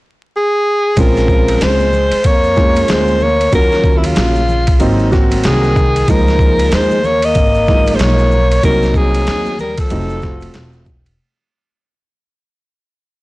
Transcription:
0.36 alto saxophone G#4
0.96 upright bass A#1, trombone F3, grand piano G#3 C4 C#4 F4, alto saxophone A#4, kick, ride, maracas
1.16 snare, maracas
1.28 kick, maracas
1.48 ride, maracas
1.61 upright bass C#2, trombone G#3, alto saxophone C5, snare, hi-hat pedal, ride, low conga, maracas
1.80 high conga, maracas
1.93 low conga, maracas
2.12 muted upright bass stroke, ride, maracas
2.24 upright bass F2, trombone A#3, alto saxophone C#5, kick, ride, maracas
2.44 maracas
2.56 grand piano G#3 A#3 C#4 F4, kick, snare, maracas
2.75 ride, high conga, maracas
2.88 upright bass D2, trombone G#3, alto saxophone C5, snare, hi-hat pedal, ride, maracas
3.08 maracas
3.20 trombone A#3, alto saxophone C#5, high conga, low conga, maracas
3.40 ride, maracas
3.52 upright bass D#2, grand piano F#3 A#3 C#4 F4, trombone F#3, alto saxophone A#4, kick, ride, maracas
3.72 snare, maracas
3.84 kick, maracas
3.96 trombone C3, alto saxophone E4
4.04 trombone C#3, alto saxophone F4, ride, maracas
4.16 upright bass A#1, snare, hi-hat pedal, ride, low conga, maracas
4.35 high conga, maracas
4.49 low conga, maracas
4.67 kick, ride, maracas
4.79 upright bass G#1, grand piano F#3 A#3 C4 D#4, ride, maracas
4.99 maracas
5.11 grand piano F#3 A#3 C4 F#4, kick, snare, maracas
5.31 ride, high conga, maracas
5.44 upright bass C2, trombone D#3, alto saxophone G#4, snare, hi-hat pedal, ride, maracas
5.63 maracas
5.76 kick, high conga, low conga, maracas
5.96 ride, maracas
6.07 upright bass C#2, grand piano F3 G#3 A#3 D#4, trombone F3, alto saxophone A#4, kick, ride, maracas
6.28 snare, maracas
6.39 kick, maracas
6.59 ride, maracas
6.72 upright bass D#2, trombone G#3, alto saxophone C5, snare, hi-hat pedal, ride, low conga, maracas
6.91 high conga, maracas
7.04 trombone A#3, alto saxophone C#5, low conga, maracas
7.22 trombone A#3, alto saxophone D#5, ride, maracas
7.35 upright bass G#1, kick, ride, maracas
7.55 maracas
7.67 grand piano E3 G#3 A#3 D#4, kick, snare, maracas
7.74 grand piano F3
7.86 ride, high conga, maracas
7.94 trombone G#3, alto saxophone C5
7.99 upright bass B1, trombone A#3, alto saxophone C#5, snare, hi-hat pedal, ride, maracas
8.18 maracas
8.31 high conga, low conga, maracas
8.51 ride, maracas
8.63 upright bass C2, grand piano F#3 A#3 C4 D#4, trombone F#3, alto saxophone A#4, kick, ride, maracas
8.82 snare, maracas
8.94 trombone F#3, alto saxophone G#4, kick, maracas
9.14 ride, maracas
9.27 upright bass D#2, snare, hi-hat pedal, ride, low conga, maracas
9.46 high conga, maracas
9.59 trombone G3, alto saxophone A#4, low conga, maracas
9.78 trombone F3, alto saxophone A4, kick, ride, maracas
9.90 upright bass F1, grand piano F#3 A3 C4 D#4, ride, maracas
10.09 maracas
10.22 grand piano A3 C4 E4 F#4, kick, snare, maracas
10.31 grand piano F4
10.41 ride, high conga, maracas
10.54 upright bass E1, snare, hi-hat pedal, ride, maracas
10.73 maracas
10.86 kick, high conga, low conga, maracas
11.06 ride, maracas

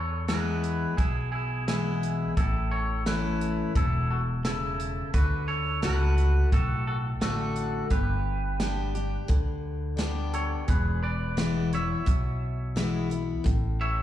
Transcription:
Already playing: upright bass E2, steel-string acoustic guitar E2, clean electric guitar A4 C#5
0.28 steel-string acoustic guitar E3 G#3 B3 E4, clean electric guitar G#4 B4, snare, closed hi-hat
0.64 closed hi-hat
0.97 upright bass B1, steel-string acoustic guitar B2, clean electric guitar E4 G#4, kick, closed hi-hat
1.32 clean electric guitar E4 G#4
1.68 steel-string acoustic guitar E3 G#3 B3 E4, clean electric guitar E4 G#4, snare, closed hi-hat
2.03 closed hi-hat
2.37 upright bass A1, steel-string acoustic guitar A2, clean electric guitar E4 A4, kick, closed hi-hat
2.71 clean electric guitar A4 C#5
3.06 steel-string acoustic guitar E3 A3 C#4 E4, clean electric guitar E4 B4, snare, closed hi-hat
3.41 closed hi-hat
3.75 upright bass E1, steel-string acoustic guitar B2, clean electric guitar E4 A4, kick, closed hi-hat
4.10 clean electric guitar F#4 A4
4.45 steel-string acoustic guitar C#3, clean electric guitar E4 A4, snare, closed hi-hat
4.80 closed hi-hat
5.14 upright bass D2, steel-string acoustic guitar D3, clean electric guitar F#4 B4, kick, closed hi-hat
5.48 clean electric guitar A4 C#5
5.82 upright bass C#2, steel-string acoustic guitar A3 D4 F#4, clean electric guitar F#4 B4, snare, closed hi-hat
6.18 closed hi-hat
6.52 upright bass B1, steel-string acoustic guitar A2, clean electric guitar F#4 A4, kick, closed hi-hat
6.87 clean electric guitar F#4 A4
7.21 upright bass A1, steel-string acoustic guitar D3 A3 D4 F#4, clean electric guitar F#4 A4, snare, closed hi-hat
7.56 closed hi-hat
7.90 upright bass G1, steel-string acoustic guitar G2, clean electric guitar G4 B4, kick, closed hi-hat
8.60 steel-string acoustic guitar G3 B3 D4 G4, snare, closed hi-hat
8.95 steel-string acoustic guitar D4 G4, closed hi-hat
9.28 upright bass D2, steel-string acoustic guitar D3, kick, closed hi-hat
9.97 steel-string acoustic guitar G3 B3 D4 G4, snare, closed hi-hat
10.34 clean electric guitar A4 C#5, closed hi-hat
10.68 upright bass E1, steel-string acoustic guitar E2, clean electric guitar G#4 B4, kick, closed hi-hat
11.03 clean electric guitar B4 D5
11.37 steel-string acoustic guitar E3 G#3 B3 E4, snare, closed hi-hat
11.73 steel-string acoustic guitar B3 E4, clean electric guitar C#5 E5, closed hi-hat
12.06 upright bass B1, steel-string acoustic guitar B2, kick, closed hi-hat
12.76 steel-string acoustic guitar E3 G#3 B3 E4, snare, closed hi-hat
13.10 steel-string acoustic guitar B3 E4, closed hi-hat
13.44 upright bass A1, steel-string acoustic guitar A2, kick, closed hi-hat
13.81 clean electric guitar C#5 E5

